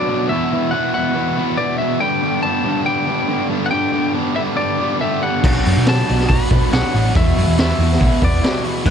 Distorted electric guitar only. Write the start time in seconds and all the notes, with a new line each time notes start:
Already playing: B2 F#3 B3 D4
0.10 B3 D4 F#4
0.30 E2 B2 E3 B3 E4 F#4
0.52 E3 B3 E4 F#4
0.73 E3 B3 E4 F#4
0.94 E2 B2 E3 B3 E4 F#4
1.15 E3 B3 E4 F#4
1.36 E3 B3 E4 F#4
1.57 E2 B2 E3 B3 E4 F#4
1.80 E3 B3 E4 F#4
2.00 G2 D3 G3 B3 D4 G4
2.22 G3 B3 D4 G4
2.43 G3 B3 D4 G4
2.65 G2 D3 G3 B3 D4 G4
2.86 G3 B3 D4 G4
3.07 G3 B3 D4 G4
3.29 G2 D3 G3 B3 D4 G4
3.50 G3 B3 D4 G4
3.72 G2 D3 G3 B3 D4 G4
3.92 G3 B3 D4 G4
4.13 G3 B3 D4 G4
4.35 G2 D3 G3 B3 D4 G4
4.58 G3 B3 D4 G4
4.78 G3 B3 D4 G4
5.01 G2 D3 G3 B3 D4 G4
5.22 G3 B3 D4 G4
5.43 B2 F#3 B3 D4 F#4
5.66 B3 D4 F#4
5.86 F#3 B3 D4 F#4
6.08 B2 F#3 B3 D4 F#4
6.29 F#3 B3 D4 F#4
6.50 B3 D4 F#4
6.71 B2 F#3 B3 D4 F#4
6.94 B3 D4 F#4
7.14 E2 B2 E3 B3 E4 F#4
7.37 E3 B3 E4 F#4
7.58 E3 B3 E4 F#4
7.80 E2 B2 E3 B3 E4 F#4
8.00 E3 B3 E4 F#4
8.21 E3 B3 E4 F#4
8.41 E2 B2 E3 B3 E4 F#4
8.64 E3 B3 E4 F#4
8.85 G2 D3 G3 B3 D4 G4